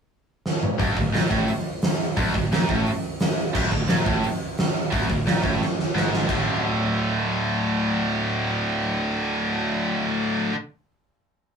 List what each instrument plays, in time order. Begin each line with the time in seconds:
0.46 snare
0.63 mid tom
0.79 fingered electric bass D1, distorted electric guitar D2, kick, open hi-hat
0.97 fingered electric bass D1, distorted electric guitar D2, kick
1.13 fingered electric bass A#1, distorted electric guitar A#2, snare, open hi-hat
1.30 fingered electric bass A1, distorted electric guitar A2, kick
1.48 open hi-hat
1.82 snare, open hi-hat
2.17 fingered electric bass D1, distorted electric guitar D2, kick, open hi-hat
2.34 fingered electric bass D1, distorted electric guitar D2, kick
2.52 fingered electric bass A#1, distorted electric guitar A#2, snare, open hi-hat
2.69 fingered electric bass A1, distorted electric guitar A2, kick
2.86 open hi-hat
3.20 snare, open hi-hat
3.55 fingered electric bass D1, distorted electric guitar D2, kick, crash
3.72 fingered electric bass D1, distorted electric guitar D2, kick
3.88 fingered electric bass A#1, distorted electric guitar A#2, snare, open hi-hat
4.06 fingered electric bass A1, distorted electric guitar A2, kick
4.24 open hi-hat
4.58 snare, open hi-hat
4.92 fingered electric bass D1, distorted electric guitar D2, kick, open hi-hat
5.09 fingered electric bass D1, distorted electric guitar D2, kick
5.26 fingered electric bass A#1, distorted electric guitar A#2, snare, open hi-hat
5.43 fingered electric bass A1, distorted electric guitar A2, kick
5.62 snare
5.79 snare
5.95 fingered electric bass G#1, distorted electric guitar G#2, snare
6.13 snare
6.28 fingered electric bass D1, distorted electric guitar D2 A2 D3, kick, crash